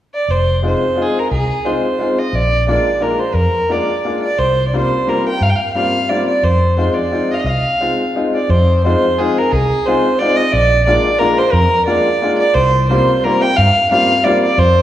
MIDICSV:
0, 0, Header, 1, 4, 480
1, 0, Start_track
1, 0, Tempo, 342661
1, 395, Time_signature, 3, 2, 24, 8
1, 12872, Tempo, 337268
1, 20886, End_track
2, 0, Start_track
2, 0, Title_t, "Violin"
2, 0, Program_c, 0, 40
2, 196, Note_on_c, 0, 74, 79
2, 424, Note_on_c, 0, 72, 81
2, 445, Note_off_c, 0, 74, 0
2, 894, Note_off_c, 0, 72, 0
2, 939, Note_on_c, 0, 72, 73
2, 1425, Note_on_c, 0, 68, 74
2, 1446, Note_off_c, 0, 72, 0
2, 1668, Note_on_c, 0, 70, 71
2, 1689, Note_off_c, 0, 68, 0
2, 1837, Note_off_c, 0, 70, 0
2, 1846, Note_on_c, 0, 68, 81
2, 2322, Note_on_c, 0, 72, 69
2, 2343, Note_off_c, 0, 68, 0
2, 3061, Note_on_c, 0, 75, 79
2, 3082, Note_off_c, 0, 72, 0
2, 3288, Note_on_c, 0, 74, 93
2, 3309, Note_off_c, 0, 75, 0
2, 3749, Note_off_c, 0, 74, 0
2, 3757, Note_on_c, 0, 74, 75
2, 4230, Note_on_c, 0, 70, 73
2, 4251, Note_off_c, 0, 74, 0
2, 4471, Note_on_c, 0, 72, 75
2, 4492, Note_off_c, 0, 70, 0
2, 4688, Note_on_c, 0, 70, 83
2, 4709, Note_off_c, 0, 72, 0
2, 5203, Note_on_c, 0, 74, 71
2, 5224, Note_off_c, 0, 70, 0
2, 5910, Note_off_c, 0, 74, 0
2, 5918, Note_on_c, 0, 74, 79
2, 6141, Note_on_c, 0, 72, 90
2, 6162, Note_off_c, 0, 74, 0
2, 6536, Note_off_c, 0, 72, 0
2, 6552, Note_on_c, 0, 74, 43
2, 6652, Note_on_c, 0, 72, 78
2, 6673, Note_off_c, 0, 74, 0
2, 7126, Note_on_c, 0, 70, 83
2, 7147, Note_off_c, 0, 72, 0
2, 7374, Note_off_c, 0, 70, 0
2, 7398, Note_on_c, 0, 79, 87
2, 7596, Note_on_c, 0, 77, 91
2, 7617, Note_off_c, 0, 79, 0
2, 7693, Note_on_c, 0, 79, 77
2, 7714, Note_off_c, 0, 77, 0
2, 7779, Note_on_c, 0, 77, 81
2, 7800, Note_off_c, 0, 79, 0
2, 8015, Note_off_c, 0, 77, 0
2, 8023, Note_on_c, 0, 77, 94
2, 8526, Note_on_c, 0, 74, 89
2, 8547, Note_off_c, 0, 77, 0
2, 8784, Note_off_c, 0, 74, 0
2, 8793, Note_on_c, 0, 74, 81
2, 9018, Note_on_c, 0, 72, 92
2, 9039, Note_off_c, 0, 74, 0
2, 9495, Note_off_c, 0, 72, 0
2, 9503, Note_on_c, 0, 72, 72
2, 9725, Note_on_c, 0, 74, 70
2, 9746, Note_off_c, 0, 72, 0
2, 10237, Note_on_c, 0, 75, 77
2, 10258, Note_off_c, 0, 74, 0
2, 10271, Note_on_c, 0, 77, 64
2, 10292, Note_off_c, 0, 75, 0
2, 10340, Note_on_c, 0, 75, 67
2, 10361, Note_off_c, 0, 77, 0
2, 10462, Note_on_c, 0, 77, 84
2, 10483, Note_off_c, 0, 75, 0
2, 11426, Note_off_c, 0, 77, 0
2, 11681, Note_on_c, 0, 74, 69
2, 11906, Note_on_c, 0, 72, 80
2, 11927, Note_off_c, 0, 74, 0
2, 12372, Note_off_c, 0, 72, 0
2, 12380, Note_on_c, 0, 72, 84
2, 12864, Note_on_c, 0, 68, 86
2, 12885, Note_off_c, 0, 72, 0
2, 13148, Note_on_c, 0, 70, 86
2, 13170, Note_off_c, 0, 68, 0
2, 13341, Note_on_c, 0, 68, 88
2, 13362, Note_off_c, 0, 70, 0
2, 13820, Note_on_c, 0, 72, 88
2, 13842, Note_off_c, 0, 68, 0
2, 14291, Note_on_c, 0, 74, 101
2, 14312, Note_off_c, 0, 72, 0
2, 14542, Note_on_c, 0, 75, 94
2, 14563, Note_off_c, 0, 74, 0
2, 14769, Note_on_c, 0, 74, 109
2, 14790, Note_off_c, 0, 75, 0
2, 15239, Note_off_c, 0, 74, 0
2, 15247, Note_on_c, 0, 74, 91
2, 15718, Note_on_c, 0, 70, 99
2, 15739, Note_off_c, 0, 74, 0
2, 15996, Note_on_c, 0, 72, 92
2, 16018, Note_off_c, 0, 70, 0
2, 16194, Note_on_c, 0, 70, 102
2, 16215, Note_off_c, 0, 72, 0
2, 16663, Note_off_c, 0, 70, 0
2, 16671, Note_on_c, 0, 74, 94
2, 17381, Note_off_c, 0, 74, 0
2, 17415, Note_on_c, 0, 74, 93
2, 17643, Note_on_c, 0, 72, 104
2, 17665, Note_off_c, 0, 74, 0
2, 18127, Note_off_c, 0, 72, 0
2, 18136, Note_on_c, 0, 72, 91
2, 18629, Note_on_c, 0, 70, 93
2, 18650, Note_off_c, 0, 72, 0
2, 18890, Note_on_c, 0, 79, 104
2, 18912, Note_off_c, 0, 70, 0
2, 19091, Note_on_c, 0, 77, 99
2, 19113, Note_off_c, 0, 79, 0
2, 19586, Note_off_c, 0, 77, 0
2, 19596, Note_on_c, 0, 77, 99
2, 20055, Note_on_c, 0, 74, 92
2, 20077, Note_off_c, 0, 77, 0
2, 20314, Note_off_c, 0, 74, 0
2, 20323, Note_on_c, 0, 74, 91
2, 20551, Note_on_c, 0, 72, 107
2, 20572, Note_off_c, 0, 74, 0
2, 20886, Note_off_c, 0, 72, 0
2, 20886, End_track
3, 0, Start_track
3, 0, Title_t, "Upright piano"
3, 0, Program_c, 1, 0
3, 874, Note_on_c, 1, 56, 54
3, 885, Note_on_c, 1, 60, 48
3, 886, Note_on_c, 1, 63, 50
3, 893, Note_on_c, 1, 65, 53
3, 1135, Note_off_c, 1, 56, 0
3, 1140, Note_off_c, 1, 60, 0
3, 1141, Note_off_c, 1, 63, 0
3, 1144, Note_off_c, 1, 65, 0
3, 1343, Note_on_c, 1, 56, 49
3, 1347, Note_on_c, 1, 60, 41
3, 1354, Note_on_c, 1, 63, 49
3, 1366, Note_on_c, 1, 65, 63
3, 1608, Note_off_c, 1, 56, 0
3, 1610, Note_off_c, 1, 60, 0
3, 1613, Note_off_c, 1, 63, 0
3, 1620, Note_off_c, 1, 65, 0
3, 2311, Note_on_c, 1, 56, 58
3, 2311, Note_on_c, 1, 60, 49
3, 2322, Note_on_c, 1, 63, 51
3, 2326, Note_on_c, 1, 65, 58
3, 2570, Note_off_c, 1, 56, 0
3, 2570, Note_off_c, 1, 60, 0
3, 2576, Note_off_c, 1, 63, 0
3, 2578, Note_off_c, 1, 65, 0
3, 2786, Note_on_c, 1, 56, 52
3, 2786, Note_on_c, 1, 60, 51
3, 2800, Note_on_c, 1, 63, 50
3, 2807, Note_on_c, 1, 65, 66
3, 3046, Note_off_c, 1, 56, 0
3, 3046, Note_off_c, 1, 60, 0
3, 3053, Note_off_c, 1, 63, 0
3, 3056, Note_off_c, 1, 65, 0
3, 3739, Note_on_c, 1, 56, 58
3, 3756, Note_on_c, 1, 58, 53
3, 3760, Note_on_c, 1, 62, 54
3, 3764, Note_on_c, 1, 65, 67
3, 3998, Note_off_c, 1, 56, 0
3, 4007, Note_off_c, 1, 58, 0
3, 4008, Note_off_c, 1, 62, 0
3, 4010, Note_off_c, 1, 65, 0
3, 4207, Note_on_c, 1, 56, 57
3, 4214, Note_on_c, 1, 58, 49
3, 4219, Note_on_c, 1, 62, 50
3, 4230, Note_on_c, 1, 65, 56
3, 4472, Note_off_c, 1, 56, 0
3, 4475, Note_off_c, 1, 58, 0
3, 4478, Note_off_c, 1, 62, 0
3, 4483, Note_off_c, 1, 65, 0
3, 5170, Note_on_c, 1, 56, 45
3, 5182, Note_on_c, 1, 58, 42
3, 5187, Note_on_c, 1, 62, 46
3, 5195, Note_on_c, 1, 65, 58
3, 5434, Note_off_c, 1, 56, 0
3, 5440, Note_off_c, 1, 58, 0
3, 5442, Note_off_c, 1, 62, 0
3, 5447, Note_off_c, 1, 65, 0
3, 5668, Note_on_c, 1, 56, 47
3, 5672, Note_on_c, 1, 58, 47
3, 5682, Note_on_c, 1, 62, 39
3, 5690, Note_on_c, 1, 65, 55
3, 5929, Note_off_c, 1, 56, 0
3, 5931, Note_off_c, 1, 58, 0
3, 5936, Note_off_c, 1, 62, 0
3, 5940, Note_off_c, 1, 65, 0
3, 6633, Note_on_c, 1, 55, 56
3, 6638, Note_on_c, 1, 58, 46
3, 6643, Note_on_c, 1, 60, 50
3, 6658, Note_on_c, 1, 65, 59
3, 6889, Note_off_c, 1, 55, 0
3, 6892, Note_off_c, 1, 58, 0
3, 6894, Note_off_c, 1, 60, 0
3, 6902, Note_off_c, 1, 65, 0
3, 7098, Note_on_c, 1, 55, 49
3, 7108, Note_on_c, 1, 58, 47
3, 7108, Note_on_c, 1, 60, 43
3, 7123, Note_on_c, 1, 65, 59
3, 7360, Note_off_c, 1, 55, 0
3, 7365, Note_off_c, 1, 58, 0
3, 7365, Note_off_c, 1, 60, 0
3, 7373, Note_off_c, 1, 65, 0
3, 8057, Note_on_c, 1, 55, 55
3, 8070, Note_on_c, 1, 60, 53
3, 8071, Note_on_c, 1, 58, 48
3, 8076, Note_on_c, 1, 65, 60
3, 8316, Note_off_c, 1, 55, 0
3, 8322, Note_off_c, 1, 60, 0
3, 8323, Note_off_c, 1, 58, 0
3, 8325, Note_off_c, 1, 65, 0
3, 8548, Note_on_c, 1, 55, 52
3, 8552, Note_on_c, 1, 58, 45
3, 8556, Note_on_c, 1, 60, 47
3, 8564, Note_on_c, 1, 65, 57
3, 8800, Note_off_c, 1, 55, 0
3, 8803, Note_off_c, 1, 58, 0
3, 8805, Note_off_c, 1, 60, 0
3, 8809, Note_off_c, 1, 65, 0
3, 9487, Note_on_c, 1, 56, 60
3, 9496, Note_on_c, 1, 60, 50
3, 9498, Note_on_c, 1, 63, 50
3, 9504, Note_on_c, 1, 65, 68
3, 9746, Note_off_c, 1, 56, 0
3, 9750, Note_off_c, 1, 60, 0
3, 9752, Note_off_c, 1, 63, 0
3, 9754, Note_off_c, 1, 65, 0
3, 9964, Note_on_c, 1, 56, 53
3, 9975, Note_on_c, 1, 60, 52
3, 9976, Note_on_c, 1, 63, 52
3, 9982, Note_on_c, 1, 65, 64
3, 10225, Note_off_c, 1, 56, 0
3, 10231, Note_off_c, 1, 60, 0
3, 10232, Note_off_c, 1, 63, 0
3, 10235, Note_off_c, 1, 65, 0
3, 10931, Note_on_c, 1, 56, 56
3, 10941, Note_on_c, 1, 60, 48
3, 10954, Note_on_c, 1, 63, 46
3, 10956, Note_on_c, 1, 65, 61
3, 11193, Note_off_c, 1, 56, 0
3, 11198, Note_off_c, 1, 60, 0
3, 11205, Note_off_c, 1, 63, 0
3, 11205, Note_off_c, 1, 65, 0
3, 11425, Note_on_c, 1, 56, 53
3, 11429, Note_on_c, 1, 60, 52
3, 11433, Note_on_c, 1, 63, 51
3, 11447, Note_on_c, 1, 65, 65
3, 11684, Note_off_c, 1, 56, 0
3, 11686, Note_off_c, 1, 60, 0
3, 11689, Note_off_c, 1, 63, 0
3, 11696, Note_off_c, 1, 65, 0
3, 12392, Note_on_c, 1, 56, 63
3, 12397, Note_on_c, 1, 60, 52
3, 12404, Note_on_c, 1, 63, 51
3, 12412, Note_on_c, 1, 65, 68
3, 12648, Note_off_c, 1, 56, 0
3, 12651, Note_off_c, 1, 60, 0
3, 12655, Note_off_c, 1, 63, 0
3, 12658, Note_off_c, 1, 65, 0
3, 12875, Note_on_c, 1, 56, 62
3, 12876, Note_on_c, 1, 60, 58
3, 12882, Note_on_c, 1, 63, 55
3, 12893, Note_on_c, 1, 65, 67
3, 13130, Note_off_c, 1, 56, 0
3, 13131, Note_off_c, 1, 60, 0
3, 13134, Note_off_c, 1, 63, 0
3, 13139, Note_off_c, 1, 65, 0
3, 13841, Note_on_c, 1, 56, 67
3, 13849, Note_on_c, 1, 60, 63
3, 13855, Note_on_c, 1, 63, 58
3, 13862, Note_on_c, 1, 65, 66
3, 14093, Note_off_c, 1, 56, 0
3, 14097, Note_off_c, 1, 60, 0
3, 14100, Note_off_c, 1, 63, 0
3, 14103, Note_off_c, 1, 65, 0
3, 14316, Note_on_c, 1, 56, 57
3, 14325, Note_on_c, 1, 60, 51
3, 14328, Note_on_c, 1, 63, 63
3, 14341, Note_on_c, 1, 65, 67
3, 14566, Note_off_c, 1, 56, 0
3, 14571, Note_off_c, 1, 60, 0
3, 14572, Note_off_c, 1, 63, 0
3, 14579, Note_off_c, 1, 65, 0
3, 15260, Note_on_c, 1, 56, 63
3, 15269, Note_on_c, 1, 62, 62
3, 15270, Note_on_c, 1, 58, 54
3, 15282, Note_on_c, 1, 65, 68
3, 15513, Note_off_c, 1, 56, 0
3, 15518, Note_off_c, 1, 58, 0
3, 15518, Note_off_c, 1, 62, 0
3, 15524, Note_off_c, 1, 65, 0
3, 15727, Note_on_c, 1, 56, 68
3, 15737, Note_on_c, 1, 58, 63
3, 15740, Note_on_c, 1, 62, 61
3, 15754, Note_on_c, 1, 65, 77
3, 15986, Note_off_c, 1, 56, 0
3, 15991, Note_off_c, 1, 58, 0
3, 15993, Note_off_c, 1, 62, 0
3, 16000, Note_off_c, 1, 65, 0
3, 16682, Note_on_c, 1, 56, 54
3, 16693, Note_on_c, 1, 58, 55
3, 16695, Note_on_c, 1, 62, 56
3, 16698, Note_on_c, 1, 65, 72
3, 16949, Note_off_c, 1, 56, 0
3, 16955, Note_off_c, 1, 58, 0
3, 16956, Note_off_c, 1, 62, 0
3, 16957, Note_off_c, 1, 65, 0
3, 17180, Note_on_c, 1, 56, 58
3, 17188, Note_on_c, 1, 58, 52
3, 17197, Note_on_c, 1, 62, 47
3, 17205, Note_on_c, 1, 65, 69
3, 17444, Note_off_c, 1, 56, 0
3, 17448, Note_off_c, 1, 58, 0
3, 17453, Note_off_c, 1, 62, 0
3, 17457, Note_off_c, 1, 65, 0
3, 18150, Note_on_c, 1, 55, 58
3, 18162, Note_on_c, 1, 60, 58
3, 18163, Note_on_c, 1, 58, 60
3, 18174, Note_on_c, 1, 65, 64
3, 18417, Note_off_c, 1, 55, 0
3, 18423, Note_off_c, 1, 58, 0
3, 18423, Note_off_c, 1, 60, 0
3, 18429, Note_off_c, 1, 65, 0
3, 18651, Note_on_c, 1, 55, 60
3, 18653, Note_on_c, 1, 58, 57
3, 18666, Note_on_c, 1, 60, 51
3, 18670, Note_on_c, 1, 65, 68
3, 18907, Note_off_c, 1, 55, 0
3, 18908, Note_off_c, 1, 58, 0
3, 18914, Note_off_c, 1, 60, 0
3, 18916, Note_off_c, 1, 65, 0
3, 19589, Note_on_c, 1, 55, 64
3, 19594, Note_on_c, 1, 58, 60
3, 19605, Note_on_c, 1, 60, 60
3, 19608, Note_on_c, 1, 65, 72
3, 19851, Note_off_c, 1, 55, 0
3, 19854, Note_off_c, 1, 58, 0
3, 19859, Note_off_c, 1, 60, 0
3, 19860, Note_off_c, 1, 65, 0
3, 20074, Note_on_c, 1, 55, 65
3, 20078, Note_on_c, 1, 58, 62
3, 20086, Note_on_c, 1, 60, 51
3, 20097, Note_on_c, 1, 65, 78
3, 20330, Note_off_c, 1, 55, 0
3, 20332, Note_off_c, 1, 58, 0
3, 20336, Note_off_c, 1, 60, 0
3, 20341, Note_off_c, 1, 65, 0
3, 20886, End_track
4, 0, Start_track
4, 0, Title_t, "Fretless electric bass"
4, 0, Program_c, 2, 35
4, 398, Note_on_c, 2, 29, 70
4, 1024, Note_off_c, 2, 29, 0
4, 1840, Note_on_c, 2, 36, 80
4, 2006, Note_off_c, 2, 36, 0
4, 3263, Note_on_c, 2, 34, 82
4, 3885, Note_off_c, 2, 34, 0
4, 4674, Note_on_c, 2, 41, 76
4, 4849, Note_off_c, 2, 41, 0
4, 6144, Note_on_c, 2, 36, 61
4, 6770, Note_off_c, 2, 36, 0
4, 7576, Note_on_c, 2, 43, 72
4, 7746, Note_off_c, 2, 43, 0
4, 9012, Note_on_c, 2, 41, 84
4, 9634, Note_off_c, 2, 41, 0
4, 10427, Note_on_c, 2, 36, 71
4, 10602, Note_off_c, 2, 36, 0
4, 11898, Note_on_c, 2, 41, 88
4, 12526, Note_off_c, 2, 41, 0
4, 13350, Note_on_c, 2, 36, 90
4, 13517, Note_off_c, 2, 36, 0
4, 14785, Note_on_c, 2, 34, 78
4, 15402, Note_off_c, 2, 34, 0
4, 16204, Note_on_c, 2, 41, 97
4, 16374, Note_off_c, 2, 41, 0
4, 17656, Note_on_c, 2, 36, 85
4, 18294, Note_off_c, 2, 36, 0
4, 19123, Note_on_c, 2, 43, 101
4, 19291, Note_off_c, 2, 43, 0
4, 20543, Note_on_c, 2, 41, 97
4, 20886, Note_off_c, 2, 41, 0
4, 20886, End_track
0, 0, End_of_file